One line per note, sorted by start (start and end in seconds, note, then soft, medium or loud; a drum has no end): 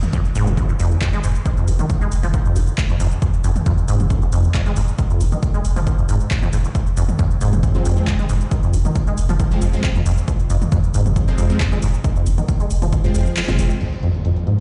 0.03 closed hi-hat medium
0.03 mid tom medium
0.03 shaker soft
0.13 0.20 F2 loud
0.13 kick loud
0.13 closed hi-hat medium
0.13 shaker soft
0.25 0.35 F1 medium
0.25 closed hi-hat medium
0.25 shaker soft
0.35 0.46 F1 medium
0.35 0.48 G#2 loud
0.35 open hi-hat loud
0.35 shaker medium
0.47 0.57 F1 medium
0.47 0.53 F2 medium
0.47 closed hi-hat medium
0.47 mid tom medium
0.47 shaker soft
0.57 0.67 F#2 medium
0.57 kick loud
0.57 closed hi-hat medium
0.57 shaker soft
0.69 0.79 F1 medium
0.69 0.72 F2 medium
0.69 closed hi-hat medium
0.69 shaker soft
0.79 0.91 F1 loud
0.79 0.93 F2 loud
0.79 open hi-hat loud
0.79 shaker medium
0.91 0.97 D#2 loud
0.91 closed hi-hat medium
0.91 shaker soft
1.01 1.08 F2 loud
1.01 kick loud
1.01 clap loud
1.01 closed hi-hat medium
1.01 shaker soft
1.13 1.23 F1 medium
1.13 1.19 G#3 loud
1.13 closed hi-hat medium
1.13 mid tom medium
1.13 shaker soft
1.24 1.35 F1 medium
1.24 1.27 G#2 loud
1.24 open hi-hat loud
1.24 shaker medium
1.35 closed hi-hat medium
1.35 shaker soft
1.46 1.49 D#3 medium
1.46 kick loud
1.46 closed hi-hat loud
1.46 shaker soft
1.57 1.67 F1 medium
1.57 1.69 F2 medium
1.57 closed hi-hat medium
1.57 shaker soft
1.68 1.79 F1 loud
1.68 1.71 G#3 loud
1.68 open hi-hat loud
1.68 shaker medium
1.79 1.85 D#3 medium
1.79 closed hi-hat medium
1.79 mid tom medium
1.79 shaker soft
1.90 kick loud
1.90 closed hi-hat loud
1.90 shaker soft
2.01 2.11 F1 medium
2.01 2.07 G#3 loud
2.01 closed hi-hat medium
2.01 shaker soft
2.12 2.23 F1 loud
2.12 open hi-hat loud
2.12 shaker medium
2.23 2.34 F1 medium
2.23 2.27 F3 loud
2.23 open hi-hat medium
2.23 mid tom medium
2.23 shaker soft
2.34 2.38 D#3 medium
2.34 kick loud
2.34 closed hi-hat loud
2.34 shaker soft
2.45 2.55 F1 medium
2.45 2.57 F2 medium
2.45 closed hi-hat medium
2.45 shaker soft
2.56 2.67 F1 loud
2.56 2.60 G#3 loud
2.56 open hi-hat loud
2.56 shaker medium
2.67 closed hi-hat medium
2.67 shaker soft
2.78 kick loud
2.78 clap loud
2.78 closed hi-hat medium
2.78 shaker soft
2.90 2.99 F1 medium
2.90 2.95 F2 medium
2.90 closed hi-hat medium
2.90 mid tom medium
2.90 shaker soft
3.00 3.11 F1 loud
3.00 3.06 F2 loud
3.00 open hi-hat loud
3.00 shaker medium
3.12 closed hi-hat medium
3.12 shaker soft
3.22 3.26 F2 medium
3.22 kick loud
3.22 closed hi-hat loud
3.22 shaker soft
3.34 3.43 F1 medium
3.34 closed hi-hat medium
3.34 shaker soft
3.44 3.55 F1 loud
3.44 3.50 F2 loud
3.44 open hi-hat loud
3.44 shaker medium
3.56 closed hi-hat medium
3.56 mid tom medium
3.56 shaker soft
3.66 3.73 F2 loud
3.66 kick loud
3.66 closed hi-hat medium
3.66 shaker soft
3.78 3.88 F1 medium
3.78 closed hi-hat medium
3.78 shaker soft
3.88 3.99 F1 loud
3.88 4.01 G#2 loud
3.88 open hi-hat loud
3.88 shaker medium
4.00 4.10 F1 medium
4.00 4.06 F2 medium
4.00 closed hi-hat medium
4.00 mid tom loud
4.00 shaker soft
4.10 4.20 F#2 medium
4.10 kick loud
4.10 closed hi-hat medium
4.10 shaker soft
4.22 4.32 F1 medium
4.22 4.25 F2 medium
4.22 closed hi-hat medium
4.22 shaker soft
4.32 4.44 F1 loud
4.32 4.45 F2 loud
4.32 open hi-hat loud
4.32 shaker medium
4.44 4.50 D#2 loud
4.44 closed hi-hat medium
4.44 shaker soft
4.54 4.61 F2 loud
4.54 kick loud
4.54 clap loud
4.54 closed hi-hat medium
4.54 shaker soft
4.66 4.76 F1 medium
4.66 4.72 G#3 loud
4.66 closed hi-hat medium
4.66 mid tom medium
4.66 shaker soft
4.76 4.88 F1 medium
4.76 4.80 G#2 loud
4.76 open hi-hat loud
4.76 shaker medium
4.88 closed hi-hat medium
4.88 shaker soft
4.98 5.02 D#3 medium
4.98 kick loud
4.98 closed hi-hat loud
4.98 shaker soft
5.10 5.20 F1 medium
5.10 5.22 F2 medium
5.10 closed hi-hat medium
5.10 shaker soft
5.21 5.32 F1 loud
5.21 5.24 G#3 loud
5.21 open hi-hat loud
5.21 shaker medium
5.32 5.38 D#3 medium
5.32 closed hi-hat medium
5.32 mid tom medium
5.32 shaker soft
5.43 kick loud
5.43 closed hi-hat medium
5.43 shaker soft
5.54 5.64 F1 medium
5.54 5.60 G#3 loud
5.54 closed hi-hat medium
5.54 shaker soft
5.65 5.76 F1 loud
5.65 open hi-hat loud
5.65 shaker medium
5.76 5.87 F1 medium
5.76 5.80 F3 loud
5.76 open hi-hat medium
5.76 mid tom loud
5.76 shaker soft
5.87 5.91 D#3 medium
5.87 kick loud
5.87 closed hi-hat medium
5.87 shaker soft
5.98 6.08 F1 medium
5.98 6.02 F2 medium
5.98 closed hi-hat medium
5.98 shaker soft
6.09 6.20 F1 loud
6.09 6.18 G#2 loud
6.09 open hi-hat loud
6.09 shaker medium
6.20 closed hi-hat soft
6.20 shaker soft
6.31 kick loud
6.31 clap loud
6.31 closed hi-hat medium
6.31 shaker soft
6.42 6.52 F1 medium
6.42 6.48 F2 loud
6.42 closed hi-hat medium
6.42 mid tom medium
6.42 shaker soft
6.53 6.64 F1 loud
6.53 6.57 G#2 loud
6.53 open hi-hat loud
6.53 shaker medium
6.65 6.68 F1 medium
6.65 closed hi-hat medium
6.65 shaker soft
6.75 6.79 F2 medium
6.75 kick loud
6.75 closed hi-hat medium
6.75 shaker soft
6.87 6.96 F1 medium
6.87 closed hi-hat soft
6.87 shaker soft
6.97 7.08 F1 loud
6.97 7.03 F2 loud
6.97 open hi-hat loud
6.97 shaker medium
7.09 closed hi-hat soft
7.09 mid tom loud
7.09 shaker soft
7.19 7.25 F2 loud
7.19 kick loud
7.19 closed hi-hat medium
7.19 shaker soft
7.31 7.41 F1 medium
7.31 closed hi-hat medium
7.31 shaker soft
7.41 7.52 F1 loud
7.41 7.54 G#2 loud
7.41 open hi-hat loud
7.41 shaker medium
7.53 7.63 F1 medium
7.53 7.59 F2 medium
7.53 closed hi-hat medium
7.53 mid tom loud
7.53 shaker soft
7.63 7.73 F#2 medium
7.63 kick loud
7.63 closed hi-hat medium
7.63 shaker soft
7.75 7.85 F1 medium
7.75 7.78 F2 medium
7.75 7.93 F3 medium
7.75 7.93 G#3 medium
7.75 7.93 C4 loud
7.75 closed hi-hat soft
7.75 shaker soft
7.85 7.97 F1 loud
7.85 7.98 F2 loud
7.85 open hi-hat loud
7.85 shaker medium
7.97 8.03 D#2 loud
7.97 8.09 F3 medium
7.97 8.09 G#3 medium
7.97 8.09 C4 medium
7.97 shaker soft
8.07 8.14 F2 loud
8.07 kick loud
8.07 clap loud
8.07 closed hi-hat medium
8.07 shaker soft
8.19 8.29 F1 medium
8.19 8.25 G#3 loud
8.19 closed hi-hat medium
8.19 mid tom medium
8.19 shaker soft
8.29 8.41 F1 medium
8.29 8.33 G#2 loud
8.29 open hi-hat loud
8.29 shaker medium
8.41 closed hi-hat medium
8.41 shaker soft
8.51 8.55 D#3 medium
8.51 kick loud
8.51 closed hi-hat medium
8.51 shaker soft
8.63 8.73 F1 medium
8.63 8.75 F2 medium
8.63 closed hi-hat medium
8.63 shaker soft
8.73 8.85 F1 loud
8.73 8.77 G#3 loud
8.73 open hi-hat loud
8.73 shaker medium
8.85 8.91 D#3 medium
8.85 closed hi-hat soft
8.85 mid tom loud
8.85 shaker soft
8.96 kick loud
8.96 closed hi-hat medium
8.96 shaker soft
9.07 9.17 F1 medium
9.07 9.13 G#3 loud
9.07 closed hi-hat medium
9.07 shaker soft
9.18 9.29 F1 loud
9.18 open hi-hat loud
9.18 shaker medium
9.29 9.40 F1 medium
9.29 9.33 F3 loud
9.29 open hi-hat medium
9.29 mid tom loud
9.29 shaker soft
9.40 9.44 D#3 medium
9.40 kick loud
9.40 closed hi-hat medium
9.40 shaker soft
9.51 9.61 F1 medium
9.51 9.55 F2 medium
9.51 9.70 F3 medium
9.51 9.70 G#3 medium
9.51 9.70 C4 loud
9.51 closed hi-hat medium
9.51 shaker soft
9.62 9.73 F1 loud
9.62 9.68 F2 medium
9.62 open hi-hat loud
9.62 shaker medium
9.73 9.85 F3 medium
9.73 9.85 G#3 medium
9.73 9.85 C4 medium
9.73 closed hi-hat soft
9.73 shaker soft
9.84 kick loud
9.84 clap loud
9.84 closed hi-hat medium
9.84 shaker soft
9.95 10.05 F1 medium
9.95 10.01 F2 medium
9.95 closed hi-hat soft
9.95 mid tom medium
9.95 shaker soft
10.06 10.17 F1 medium
10.06 10.12 F2 loud
10.06 open hi-hat loud
10.06 shaker medium
10.18 closed hi-hat medium
10.18 shaker soft
10.28 10.32 F2 medium
10.28 kick loud
10.28 closed hi-hat medium
10.28 shaker soft
10.40 10.49 F1 medium
10.40 closed hi-hat medium
10.40 shaker soft
10.50 10.61 F1 loud
10.50 10.56 F2 loud
10.50 open hi-hat loud
10.50 shaker medium
10.62 closed hi-hat soft
10.62 mid tom medium
10.62 shaker soft
10.72 10.78 F2 loud
10.72 kick loud
10.72 closed hi-hat medium
10.72 shaker soft
10.84 10.94 F1 medium
10.84 closed hi-hat medium
10.84 shaker soft
10.94 11.05 F1 loud
10.94 11.07 G#2 loud
10.94 open hi-hat loud
10.94 shaker medium
11.06 11.16 F1 medium
11.06 11.12 F2 medium
11.06 closed hi-hat medium
11.06 mid tom loud
11.06 shaker soft
11.16 11.26 F#2 medium
11.16 kick loud
11.16 closed hi-hat medium
11.16 shaker soft
11.28 11.38 F1 medium
11.28 11.31 F2 medium
11.28 11.46 F3 medium
11.28 11.46 G#3 medium
11.28 11.46 C4 loud
11.28 closed hi-hat medium
11.28 shaker soft
11.38 11.50 F1 loud
11.38 11.51 F2 loud
11.38 open hi-hat loud
11.38 shaker medium
11.50 11.56 D#2 loud
11.50 11.62 F3 medium
11.50 11.62 G#3 medium
11.50 11.62 C4 medium
11.50 closed hi-hat soft
11.50 shaker soft
11.60 11.67 F2 loud
11.60 kick loud
11.60 clap loud
11.60 closed hi-hat medium
11.60 shaker soft
11.72 11.82 F1 medium
11.72 11.78 G#3 loud
11.72 closed hi-hat medium
11.72 mid tom medium
11.72 shaker soft
11.82 11.94 F1 loud
11.82 11.86 G#2 loud
11.82 open hi-hat loud
11.82 shaker medium
11.94 closed hi-hat soft
11.94 shaker soft
12.04 12.08 D#3 medium
12.04 kick loud
12.04 closed hi-hat loud
12.04 shaker soft
12.16 12.26 F1 medium
12.16 12.28 F2 medium
12.16 closed hi-hat medium
12.16 shaker soft
12.26 12.38 F1 loud
12.26 12.30 G#3 loud
12.26 open hi-hat loud
12.26 shaker medium
12.38 12.44 D#3 medium
12.38 closed hi-hat medium
12.38 mid tom medium
12.38 shaker soft
12.48 kick loud
12.48 closed hi-hat medium
12.48 shaker soft
12.60 12.70 F1 medium
12.60 12.66 G#3 loud
12.60 closed hi-hat medium
12.60 shaker soft
12.70 12.82 F1 loud
12.70 open hi-hat loud
12.70 shaker medium
12.82 12.92 F1 medium
12.82 12.86 F3 loud
12.82 open hi-hat medium
12.82 mid tom medium
12.82 shaker soft
12.92 12.96 D#3 medium
12.92 kick loud
12.92 closed hi-hat medium
12.92 shaker soft
13.04 13.14 F1 medium
13.04 13.08 F2 medium
13.04 13.13 F3 medium
13.04 13.13 G#3 medium
13.04 13.13 C4 loud
13.04 closed hi-hat medium
13.04 shaker soft
13.15 13.26 F1 loud
13.15 13.21 F2 medium
13.15 13.28 F3 medium
13.15 13.28 G#3 medium
13.15 13.28 C4 medium
13.15 open hi-hat loud
13.15 shaker medium
13.26 closed hi-hat soft
13.26 shaker soft
13.37 13.43 F3 medium
13.37 clap loud
13.37 closed hi-hat medium
13.37 shaker soft
13.48 13.58 F1 medium
13.48 13.54 A#2 medium
13.48 13.57 F3 medium
13.48 13.57 G#3 medium
13.48 13.57 C4 loud
13.48 closed hi-hat medium
13.48 mid tom medium
13.48 shaker soft
13.59 13.70 F1 loud
13.59 13.65 A#2 medium
13.59 13.72 F3 medium
13.59 13.72 G#3 medium
13.59 13.72 C4 medium
13.59 open hi-hat loud
13.59 shaker medium
13.70 closed hi-hat medium
13.70 shaker soft
13.81 13.85 F2 medium
13.81 14.60 F3 medium
13.81 closed hi-hat loud
13.81 crash medium
13.81 impact medium
13.92 closed hi-hat medium
14.03 14.09 F2 loud
14.03 closed hi-hat medium
14.14 closed hi-hat medium
14.25 14.31 F2 loud
14.25 closed hi-hat medium
14.36 closed hi-hat medium
14.47 14.60 G#2 loud
14.47 closed hi-hat medium